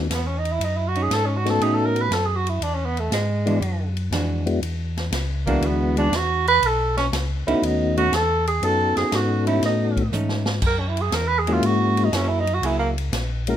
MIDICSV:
0, 0, Header, 1, 6, 480
1, 0, Start_track
1, 0, Tempo, 500835
1, 584, Time_signature, 4, 2, 24, 8
1, 13005, End_track
2, 0, Start_track
2, 0, Title_t, "Tenor saxophone"
2, 0, Program_c, 0, 66
2, 137, Note_on_c, 0, 59, 75
2, 259, Note_on_c, 0, 61, 75
2, 273, Note_off_c, 0, 59, 0
2, 364, Note_on_c, 0, 63, 84
2, 378, Note_off_c, 0, 61, 0
2, 502, Note_on_c, 0, 64, 87
2, 516, Note_off_c, 0, 63, 0
2, 621, Note_on_c, 0, 63, 72
2, 635, Note_off_c, 0, 64, 0
2, 735, Note_on_c, 0, 64, 79
2, 749, Note_off_c, 0, 63, 0
2, 844, Note_on_c, 0, 66, 85
2, 859, Note_off_c, 0, 64, 0
2, 983, Note_on_c, 0, 68, 86
2, 997, Note_off_c, 0, 66, 0
2, 1094, Note_on_c, 0, 69, 95
2, 1108, Note_off_c, 0, 68, 0
2, 1208, Note_on_c, 0, 61, 67
2, 1222, Note_off_c, 0, 69, 0
2, 1311, Note_on_c, 0, 66, 82
2, 1326, Note_off_c, 0, 61, 0
2, 1439, Note_on_c, 0, 69, 95
2, 1453, Note_off_c, 0, 66, 0
2, 1562, Note_on_c, 0, 68, 86
2, 1576, Note_off_c, 0, 69, 0
2, 1672, Note_on_c, 0, 69, 86
2, 1687, Note_off_c, 0, 68, 0
2, 1781, Note_on_c, 0, 70, 96
2, 1795, Note_off_c, 0, 69, 0
2, 1927, Note_on_c, 0, 71, 86
2, 1941, Note_off_c, 0, 70, 0
2, 2048, Note_on_c, 0, 69, 83
2, 2062, Note_off_c, 0, 71, 0
2, 2169, Note_on_c, 0, 68, 80
2, 2183, Note_off_c, 0, 69, 0
2, 2264, Note_on_c, 0, 66, 83
2, 2279, Note_off_c, 0, 68, 0
2, 2388, Note_on_c, 0, 64, 74
2, 2402, Note_off_c, 0, 66, 0
2, 2519, Note_on_c, 0, 62, 82
2, 2533, Note_off_c, 0, 64, 0
2, 2635, Note_on_c, 0, 61, 75
2, 2649, Note_off_c, 0, 62, 0
2, 2735, Note_on_c, 0, 59, 88
2, 2750, Note_off_c, 0, 61, 0
2, 2869, Note_on_c, 0, 57, 73
2, 2883, Note_off_c, 0, 59, 0
2, 2966, Note_off_c, 0, 57, 0
2, 3004, Note_on_c, 0, 56, 84
2, 3770, Note_off_c, 0, 56, 0
2, 5240, Note_on_c, 0, 58, 84
2, 5422, Note_on_c, 0, 59, 78
2, 5437, Note_off_c, 0, 58, 0
2, 5731, Note_off_c, 0, 59, 0
2, 5736, Note_on_c, 0, 62, 89
2, 5904, Note_on_c, 0, 66, 94
2, 5918, Note_off_c, 0, 62, 0
2, 6207, Note_off_c, 0, 66, 0
2, 6213, Note_on_c, 0, 71, 117
2, 6387, Note_on_c, 0, 69, 96
2, 6401, Note_off_c, 0, 71, 0
2, 6678, Note_off_c, 0, 69, 0
2, 6684, Note_on_c, 0, 61, 91
2, 6772, Note_off_c, 0, 61, 0
2, 7162, Note_on_c, 0, 64, 93
2, 7337, Note_on_c, 0, 63, 78
2, 7351, Note_off_c, 0, 64, 0
2, 7637, Note_off_c, 0, 63, 0
2, 7643, Note_on_c, 0, 66, 101
2, 7811, Note_on_c, 0, 69, 100
2, 7825, Note_off_c, 0, 66, 0
2, 8120, Note_off_c, 0, 69, 0
2, 8126, Note_on_c, 0, 68, 94
2, 8289, Note_on_c, 0, 69, 99
2, 8303, Note_off_c, 0, 68, 0
2, 8590, Note_off_c, 0, 69, 0
2, 8596, Note_on_c, 0, 68, 100
2, 8775, Note_on_c, 0, 66, 86
2, 8789, Note_off_c, 0, 68, 0
2, 9071, Note_off_c, 0, 66, 0
2, 9077, Note_on_c, 0, 64, 87
2, 9215, Note_off_c, 0, 64, 0
2, 9253, Note_on_c, 0, 63, 77
2, 9686, Note_off_c, 0, 63, 0
2, 10220, Note_on_c, 0, 70, 91
2, 10348, Note_on_c, 0, 61, 62
2, 10362, Note_off_c, 0, 70, 0
2, 10430, Note_on_c, 0, 64, 98
2, 10444, Note_off_c, 0, 61, 0
2, 10556, Note_on_c, 0, 68, 88
2, 10571, Note_off_c, 0, 64, 0
2, 10682, Note_on_c, 0, 70, 96
2, 10696, Note_off_c, 0, 68, 0
2, 10807, Note_on_c, 0, 71, 113
2, 10821, Note_off_c, 0, 70, 0
2, 10913, Note_on_c, 0, 68, 92
2, 10928, Note_off_c, 0, 71, 0
2, 11049, Note_on_c, 0, 65, 90
2, 11063, Note_off_c, 0, 68, 0
2, 11171, Note_on_c, 0, 66, 104
2, 11185, Note_off_c, 0, 65, 0
2, 11545, Note_on_c, 0, 63, 85
2, 11559, Note_off_c, 0, 66, 0
2, 11639, Note_on_c, 0, 61, 89
2, 11654, Note_off_c, 0, 63, 0
2, 11773, Note_on_c, 0, 64, 97
2, 11788, Note_off_c, 0, 61, 0
2, 11887, Note_on_c, 0, 63, 102
2, 11902, Note_off_c, 0, 64, 0
2, 12020, Note_on_c, 0, 66, 93
2, 12035, Note_off_c, 0, 63, 0
2, 12134, Note_on_c, 0, 64, 91
2, 12148, Note_off_c, 0, 66, 0
2, 12252, Note_off_c, 0, 64, 0
2, 12258, Note_on_c, 0, 58, 84
2, 12358, Note_off_c, 0, 58, 0
2, 12935, Note_on_c, 0, 70, 77
2, 13005, Note_off_c, 0, 70, 0
2, 13005, End_track
3, 0, Start_track
3, 0, Title_t, "Tonewheel organ"
3, 0, Program_c, 1, 16
3, 1393, Note_on_c, 1, 57, 66
3, 1394, Note_on_c, 1, 63, 64
3, 1394, Note_on_c, 1, 66, 69
3, 1398, Note_on_c, 1, 59, 61
3, 1398, Note_on_c, 1, 61, 64
3, 1996, Note_off_c, 1, 57, 0
3, 1996, Note_off_c, 1, 63, 0
3, 1996, Note_off_c, 1, 66, 0
3, 1998, Note_off_c, 1, 59, 0
3, 1998, Note_off_c, 1, 61, 0
3, 3313, Note_on_c, 1, 56, 65
3, 3313, Note_on_c, 1, 62, 60
3, 3315, Note_on_c, 1, 59, 62
3, 3318, Note_on_c, 1, 64, 62
3, 3319, Note_on_c, 1, 66, 74
3, 3451, Note_off_c, 1, 56, 0
3, 3451, Note_off_c, 1, 62, 0
3, 3452, Note_off_c, 1, 59, 0
3, 3454, Note_off_c, 1, 64, 0
3, 3454, Note_off_c, 1, 66, 0
3, 4276, Note_on_c, 1, 56, 65
3, 4277, Note_on_c, 1, 59, 64
3, 4277, Note_on_c, 1, 64, 59
3, 4277, Note_on_c, 1, 66, 81
3, 4281, Note_on_c, 1, 62, 58
3, 4413, Note_off_c, 1, 56, 0
3, 4413, Note_off_c, 1, 59, 0
3, 4413, Note_off_c, 1, 64, 0
3, 4413, Note_off_c, 1, 66, 0
3, 4415, Note_off_c, 1, 62, 0
3, 5244, Note_on_c, 1, 56, 65
3, 5245, Note_on_c, 1, 62, 60
3, 5247, Note_on_c, 1, 64, 63
3, 5249, Note_on_c, 1, 59, 62
3, 5251, Note_on_c, 1, 66, 70
3, 5842, Note_off_c, 1, 56, 0
3, 5842, Note_off_c, 1, 62, 0
3, 5843, Note_off_c, 1, 64, 0
3, 5844, Note_off_c, 1, 59, 0
3, 5845, Note_off_c, 1, 66, 0
3, 7161, Note_on_c, 1, 57, 67
3, 7161, Note_on_c, 1, 61, 62
3, 7163, Note_on_c, 1, 59, 64
3, 7166, Note_on_c, 1, 66, 76
3, 7167, Note_on_c, 1, 63, 64
3, 7758, Note_off_c, 1, 57, 0
3, 7758, Note_off_c, 1, 61, 0
3, 7759, Note_off_c, 1, 59, 0
3, 7761, Note_off_c, 1, 63, 0
3, 7761, Note_off_c, 1, 66, 0
3, 8271, Note_on_c, 1, 61, 54
3, 8271, Note_on_c, 1, 69, 62
3, 8272, Note_on_c, 1, 59, 55
3, 8274, Note_on_c, 1, 66, 64
3, 8277, Note_on_c, 1, 63, 58
3, 9617, Note_off_c, 1, 59, 0
3, 9617, Note_off_c, 1, 61, 0
3, 9617, Note_off_c, 1, 69, 0
3, 9618, Note_off_c, 1, 66, 0
3, 9620, Note_off_c, 1, 63, 0
3, 11003, Note_on_c, 1, 56, 74
3, 11005, Note_on_c, 1, 58, 67
3, 11005, Note_on_c, 1, 64, 67
3, 11006, Note_on_c, 1, 61, 68
3, 11006, Note_on_c, 1, 66, 86
3, 11595, Note_off_c, 1, 56, 0
3, 11596, Note_off_c, 1, 58, 0
3, 11596, Note_off_c, 1, 64, 0
3, 11597, Note_off_c, 1, 61, 0
3, 11597, Note_off_c, 1, 66, 0
3, 12919, Note_on_c, 1, 56, 75
3, 12919, Note_on_c, 1, 61, 66
3, 12920, Note_on_c, 1, 58, 67
3, 12923, Note_on_c, 1, 64, 62
3, 12926, Note_on_c, 1, 66, 84
3, 13005, Note_off_c, 1, 56, 0
3, 13005, Note_off_c, 1, 58, 0
3, 13005, Note_off_c, 1, 61, 0
3, 13005, Note_off_c, 1, 64, 0
3, 13005, Note_off_c, 1, 66, 0
3, 13005, End_track
4, 0, Start_track
4, 0, Title_t, "Hollow-body jazz guitar"
4, 0, Program_c, 2, 26
4, 925, Note_on_c, 2, 61, 58
4, 926, Note_on_c, 2, 63, 62
4, 1521, Note_off_c, 2, 61, 0
4, 1522, Note_off_c, 2, 63, 0
4, 1552, Note_on_c, 2, 57, 69
4, 1560, Note_on_c, 2, 61, 65
4, 1564, Note_on_c, 2, 63, 71
4, 1848, Note_off_c, 2, 57, 0
4, 1852, Note_off_c, 2, 61, 0
4, 1854, Note_off_c, 2, 63, 0
4, 3323, Note_on_c, 2, 52, 54
4, 3327, Note_on_c, 2, 56, 62
4, 3332, Note_on_c, 2, 62, 62
4, 3334, Note_on_c, 2, 66, 55
4, 3456, Note_off_c, 2, 52, 0
4, 3458, Note_off_c, 2, 56, 0
4, 3461, Note_off_c, 2, 62, 0
4, 3462, Note_off_c, 2, 66, 0
4, 3951, Note_on_c, 2, 52, 59
4, 3956, Note_on_c, 2, 56, 52
4, 3963, Note_on_c, 2, 62, 57
4, 3965, Note_on_c, 2, 66, 58
4, 4249, Note_off_c, 2, 52, 0
4, 4251, Note_off_c, 2, 56, 0
4, 4255, Note_off_c, 2, 62, 0
4, 4256, Note_off_c, 2, 66, 0
4, 5245, Note_on_c, 2, 52, 65
4, 5247, Note_on_c, 2, 56, 78
4, 5252, Note_on_c, 2, 62, 77
4, 5256, Note_on_c, 2, 66, 83
4, 5690, Note_off_c, 2, 52, 0
4, 5691, Note_off_c, 2, 56, 0
4, 5693, Note_off_c, 2, 62, 0
4, 5696, Note_off_c, 2, 66, 0
4, 5728, Note_on_c, 2, 52, 69
4, 5729, Note_on_c, 2, 56, 74
4, 5734, Note_on_c, 2, 62, 76
4, 5736, Note_on_c, 2, 66, 74
4, 5859, Note_off_c, 2, 52, 0
4, 5859, Note_off_c, 2, 56, 0
4, 5862, Note_off_c, 2, 62, 0
4, 5863, Note_off_c, 2, 66, 0
4, 7160, Note_on_c, 2, 57, 64
4, 7163, Note_on_c, 2, 61, 69
4, 7166, Note_on_c, 2, 63, 73
4, 7294, Note_off_c, 2, 57, 0
4, 7295, Note_off_c, 2, 61, 0
4, 7296, Note_off_c, 2, 63, 0
4, 7641, Note_on_c, 2, 57, 66
4, 7649, Note_on_c, 2, 61, 67
4, 7655, Note_on_c, 2, 63, 70
4, 7774, Note_off_c, 2, 57, 0
4, 7778, Note_off_c, 2, 61, 0
4, 7780, Note_off_c, 2, 63, 0
4, 9082, Note_on_c, 2, 57, 63
4, 9086, Note_on_c, 2, 61, 66
4, 9087, Note_on_c, 2, 63, 70
4, 9213, Note_off_c, 2, 57, 0
4, 9215, Note_off_c, 2, 61, 0
4, 9216, Note_off_c, 2, 63, 0
4, 9707, Note_on_c, 2, 57, 59
4, 9710, Note_on_c, 2, 61, 56
4, 9716, Note_on_c, 2, 63, 60
4, 10003, Note_off_c, 2, 57, 0
4, 10004, Note_off_c, 2, 61, 0
4, 10007, Note_off_c, 2, 63, 0
4, 10995, Note_on_c, 2, 54, 66
4, 10999, Note_on_c, 2, 58, 64
4, 11000, Note_on_c, 2, 64, 66
4, 11003, Note_on_c, 2, 68, 62
4, 11127, Note_off_c, 2, 54, 0
4, 11129, Note_off_c, 2, 58, 0
4, 11130, Note_off_c, 2, 64, 0
4, 11131, Note_off_c, 2, 68, 0
4, 11631, Note_on_c, 2, 54, 69
4, 11637, Note_on_c, 2, 58, 68
4, 11641, Note_on_c, 2, 64, 73
4, 11643, Note_on_c, 2, 68, 70
4, 11922, Note_off_c, 2, 54, 0
4, 11925, Note_off_c, 2, 58, 0
4, 11928, Note_off_c, 2, 64, 0
4, 11929, Note_off_c, 2, 68, 0
4, 12110, Note_on_c, 2, 54, 65
4, 12116, Note_on_c, 2, 58, 64
4, 12118, Note_on_c, 2, 64, 67
4, 12121, Note_on_c, 2, 68, 72
4, 12401, Note_off_c, 2, 54, 0
4, 12404, Note_off_c, 2, 58, 0
4, 12405, Note_off_c, 2, 64, 0
4, 12407, Note_off_c, 2, 68, 0
4, 13005, End_track
5, 0, Start_track
5, 0, Title_t, "Tonewheel organ"
5, 0, Program_c, 3, 16
5, 96, Note_on_c, 3, 40, 84
5, 566, Note_off_c, 3, 40, 0
5, 573, Note_on_c, 3, 42, 79
5, 1045, Note_off_c, 3, 42, 0
5, 1059, Note_on_c, 3, 44, 82
5, 1529, Note_off_c, 3, 44, 0
5, 1537, Note_on_c, 3, 45, 78
5, 2009, Note_off_c, 3, 45, 0
5, 2018, Note_on_c, 3, 42, 80
5, 2489, Note_off_c, 3, 42, 0
5, 2501, Note_on_c, 3, 40, 77
5, 2971, Note_off_c, 3, 40, 0
5, 2981, Note_on_c, 3, 44, 87
5, 3451, Note_off_c, 3, 44, 0
5, 3459, Note_on_c, 3, 42, 83
5, 3930, Note_off_c, 3, 42, 0
5, 3939, Note_on_c, 3, 41, 81
5, 4410, Note_off_c, 3, 41, 0
5, 4424, Note_on_c, 3, 40, 77
5, 4893, Note_off_c, 3, 40, 0
5, 4895, Note_on_c, 3, 37, 86
5, 5368, Note_off_c, 3, 37, 0
5, 5380, Note_on_c, 3, 38, 82
5, 5850, Note_off_c, 3, 38, 0
5, 5858, Note_on_c, 3, 40, 81
5, 6329, Note_off_c, 3, 40, 0
5, 6346, Note_on_c, 3, 35, 83
5, 6813, Note_off_c, 3, 35, 0
5, 6823, Note_on_c, 3, 37, 90
5, 7133, Note_off_c, 3, 37, 0
5, 7158, Note_on_c, 3, 37, 41
5, 7233, Note_off_c, 3, 37, 0
5, 7303, Note_on_c, 3, 39, 80
5, 7771, Note_off_c, 3, 39, 0
5, 7785, Note_on_c, 3, 40, 88
5, 8251, Note_off_c, 3, 40, 0
5, 8261, Note_on_c, 3, 42, 79
5, 8571, Note_off_c, 3, 42, 0
5, 8596, Note_on_c, 3, 42, 35
5, 8671, Note_off_c, 3, 42, 0
5, 8740, Note_on_c, 3, 44, 86
5, 9208, Note_off_c, 3, 44, 0
5, 9217, Note_on_c, 3, 45, 85
5, 9685, Note_off_c, 3, 45, 0
5, 9700, Note_on_c, 3, 44, 79
5, 10167, Note_off_c, 3, 44, 0
5, 10179, Note_on_c, 3, 42, 80
5, 10645, Note_off_c, 3, 42, 0
5, 10655, Note_on_c, 3, 40, 85
5, 11123, Note_off_c, 3, 40, 0
5, 11135, Note_on_c, 3, 44, 85
5, 11602, Note_off_c, 3, 44, 0
5, 11622, Note_on_c, 3, 42, 85
5, 12085, Note_off_c, 3, 42, 0
5, 12095, Note_on_c, 3, 37, 79
5, 12561, Note_off_c, 3, 37, 0
5, 12571, Note_on_c, 3, 34, 89
5, 13005, Note_off_c, 3, 34, 0
5, 13005, End_track
6, 0, Start_track
6, 0, Title_t, "Drums"
6, 99, Note_on_c, 9, 38, 59
6, 101, Note_on_c, 9, 44, 49
6, 101, Note_on_c, 9, 51, 65
6, 195, Note_off_c, 9, 38, 0
6, 197, Note_off_c, 9, 44, 0
6, 197, Note_off_c, 9, 51, 0
6, 433, Note_on_c, 9, 51, 42
6, 528, Note_off_c, 9, 51, 0
6, 584, Note_on_c, 9, 51, 64
6, 680, Note_off_c, 9, 51, 0
6, 914, Note_on_c, 9, 51, 40
6, 1010, Note_off_c, 9, 51, 0
6, 1062, Note_on_c, 9, 38, 58
6, 1064, Note_on_c, 9, 44, 50
6, 1064, Note_on_c, 9, 51, 65
6, 1158, Note_off_c, 9, 38, 0
6, 1160, Note_off_c, 9, 44, 0
6, 1160, Note_off_c, 9, 51, 0
6, 1400, Note_on_c, 9, 38, 41
6, 1402, Note_on_c, 9, 51, 44
6, 1496, Note_off_c, 9, 38, 0
6, 1498, Note_off_c, 9, 51, 0
6, 1547, Note_on_c, 9, 51, 55
6, 1642, Note_off_c, 9, 51, 0
6, 1877, Note_on_c, 9, 51, 43
6, 1973, Note_off_c, 9, 51, 0
6, 2026, Note_on_c, 9, 38, 64
6, 2028, Note_on_c, 9, 44, 51
6, 2028, Note_on_c, 9, 51, 60
6, 2122, Note_off_c, 9, 38, 0
6, 2123, Note_off_c, 9, 44, 0
6, 2123, Note_off_c, 9, 51, 0
6, 2363, Note_on_c, 9, 51, 44
6, 2459, Note_off_c, 9, 51, 0
6, 2509, Note_on_c, 9, 51, 62
6, 2605, Note_off_c, 9, 51, 0
6, 2845, Note_on_c, 9, 51, 45
6, 2941, Note_off_c, 9, 51, 0
6, 2987, Note_on_c, 9, 38, 64
6, 2989, Note_on_c, 9, 44, 59
6, 2989, Note_on_c, 9, 51, 62
6, 3083, Note_off_c, 9, 38, 0
6, 3085, Note_off_c, 9, 44, 0
6, 3085, Note_off_c, 9, 51, 0
6, 3322, Note_on_c, 9, 51, 44
6, 3418, Note_off_c, 9, 51, 0
6, 3471, Note_on_c, 9, 51, 53
6, 3567, Note_off_c, 9, 51, 0
6, 3801, Note_on_c, 9, 51, 42
6, 3897, Note_off_c, 9, 51, 0
6, 3950, Note_on_c, 9, 38, 60
6, 3952, Note_on_c, 9, 44, 57
6, 3952, Note_on_c, 9, 51, 63
6, 4046, Note_off_c, 9, 38, 0
6, 4048, Note_off_c, 9, 44, 0
6, 4048, Note_off_c, 9, 51, 0
6, 4281, Note_on_c, 9, 51, 43
6, 4377, Note_off_c, 9, 51, 0
6, 4433, Note_on_c, 9, 51, 58
6, 4529, Note_off_c, 9, 51, 0
6, 4765, Note_on_c, 9, 38, 44
6, 4767, Note_on_c, 9, 51, 44
6, 4861, Note_off_c, 9, 38, 0
6, 4863, Note_off_c, 9, 51, 0
6, 4909, Note_on_c, 9, 38, 66
6, 4911, Note_on_c, 9, 44, 53
6, 4911, Note_on_c, 9, 51, 67
6, 5005, Note_off_c, 9, 38, 0
6, 5007, Note_off_c, 9, 44, 0
6, 5007, Note_off_c, 9, 51, 0
6, 5241, Note_on_c, 9, 36, 53
6, 5244, Note_on_c, 9, 51, 46
6, 5337, Note_off_c, 9, 36, 0
6, 5340, Note_off_c, 9, 51, 0
6, 5390, Note_on_c, 9, 51, 60
6, 5485, Note_off_c, 9, 51, 0
6, 5720, Note_on_c, 9, 51, 45
6, 5816, Note_off_c, 9, 51, 0
6, 5870, Note_on_c, 9, 38, 64
6, 5872, Note_on_c, 9, 44, 50
6, 5872, Note_on_c, 9, 51, 64
6, 5966, Note_off_c, 9, 38, 0
6, 5968, Note_off_c, 9, 44, 0
6, 5968, Note_off_c, 9, 51, 0
6, 6204, Note_on_c, 9, 51, 48
6, 6300, Note_off_c, 9, 51, 0
6, 6350, Note_on_c, 9, 51, 70
6, 6446, Note_off_c, 9, 51, 0
6, 6682, Note_on_c, 9, 38, 47
6, 6684, Note_on_c, 9, 51, 43
6, 6778, Note_off_c, 9, 38, 0
6, 6780, Note_off_c, 9, 51, 0
6, 6832, Note_on_c, 9, 38, 66
6, 6834, Note_on_c, 9, 44, 59
6, 6834, Note_on_c, 9, 51, 66
6, 6928, Note_off_c, 9, 38, 0
6, 6930, Note_off_c, 9, 44, 0
6, 6930, Note_off_c, 9, 51, 0
6, 7166, Note_on_c, 9, 51, 47
6, 7262, Note_off_c, 9, 51, 0
6, 7315, Note_on_c, 9, 51, 60
6, 7411, Note_off_c, 9, 51, 0
6, 7642, Note_on_c, 9, 51, 44
6, 7738, Note_off_c, 9, 51, 0
6, 7787, Note_on_c, 9, 38, 66
6, 7789, Note_on_c, 9, 44, 53
6, 7789, Note_on_c, 9, 51, 62
6, 7883, Note_off_c, 9, 38, 0
6, 7884, Note_off_c, 9, 44, 0
6, 7884, Note_off_c, 9, 51, 0
6, 8121, Note_on_c, 9, 51, 50
6, 8217, Note_off_c, 9, 51, 0
6, 8267, Note_on_c, 9, 51, 63
6, 8363, Note_off_c, 9, 51, 0
6, 8591, Note_on_c, 9, 38, 45
6, 8593, Note_on_c, 9, 51, 47
6, 8687, Note_off_c, 9, 38, 0
6, 8689, Note_off_c, 9, 51, 0
6, 8739, Note_on_c, 9, 38, 66
6, 8741, Note_on_c, 9, 44, 60
6, 8741, Note_on_c, 9, 51, 63
6, 8835, Note_off_c, 9, 38, 0
6, 8837, Note_off_c, 9, 44, 0
6, 8837, Note_off_c, 9, 51, 0
6, 9074, Note_on_c, 9, 51, 47
6, 9169, Note_off_c, 9, 51, 0
6, 9222, Note_on_c, 9, 38, 38
6, 9224, Note_on_c, 9, 51, 57
6, 9318, Note_off_c, 9, 38, 0
6, 9320, Note_off_c, 9, 51, 0
6, 9553, Note_on_c, 9, 36, 52
6, 9557, Note_on_c, 9, 51, 43
6, 9649, Note_off_c, 9, 36, 0
6, 9653, Note_off_c, 9, 51, 0
6, 9703, Note_on_c, 9, 48, 43
6, 9704, Note_on_c, 9, 44, 58
6, 9798, Note_off_c, 9, 48, 0
6, 9800, Note_off_c, 9, 44, 0
6, 9862, Note_on_c, 9, 38, 58
6, 9958, Note_off_c, 9, 38, 0
6, 10021, Note_on_c, 9, 38, 82
6, 10117, Note_off_c, 9, 38, 0
6, 10176, Note_on_c, 9, 49, 80
6, 10179, Note_on_c, 9, 36, 75
6, 10272, Note_off_c, 9, 49, 0
6, 10275, Note_off_c, 9, 36, 0
6, 10512, Note_on_c, 9, 51, 46
6, 10607, Note_off_c, 9, 51, 0
6, 10657, Note_on_c, 9, 38, 69
6, 10659, Note_on_c, 9, 44, 55
6, 10659, Note_on_c, 9, 51, 67
6, 10753, Note_off_c, 9, 38, 0
6, 10755, Note_off_c, 9, 44, 0
6, 10755, Note_off_c, 9, 51, 0
6, 10993, Note_on_c, 9, 51, 46
6, 11088, Note_off_c, 9, 51, 0
6, 11142, Note_on_c, 9, 51, 61
6, 11238, Note_off_c, 9, 51, 0
6, 11473, Note_on_c, 9, 51, 47
6, 11569, Note_off_c, 9, 51, 0
6, 11621, Note_on_c, 9, 38, 66
6, 11623, Note_on_c, 9, 44, 54
6, 11623, Note_on_c, 9, 51, 62
6, 11717, Note_off_c, 9, 38, 0
6, 11719, Note_off_c, 9, 44, 0
6, 11719, Note_off_c, 9, 51, 0
6, 11952, Note_on_c, 9, 51, 46
6, 12048, Note_off_c, 9, 51, 0
6, 12105, Note_on_c, 9, 51, 63
6, 12201, Note_off_c, 9, 51, 0
6, 12437, Note_on_c, 9, 51, 47
6, 12533, Note_off_c, 9, 51, 0
6, 12579, Note_on_c, 9, 38, 66
6, 12581, Note_on_c, 9, 44, 64
6, 12581, Note_on_c, 9, 51, 69
6, 12675, Note_off_c, 9, 38, 0
6, 12677, Note_off_c, 9, 44, 0
6, 12677, Note_off_c, 9, 51, 0
6, 12908, Note_on_c, 9, 51, 51
6, 13004, Note_off_c, 9, 51, 0
6, 13005, End_track
0, 0, End_of_file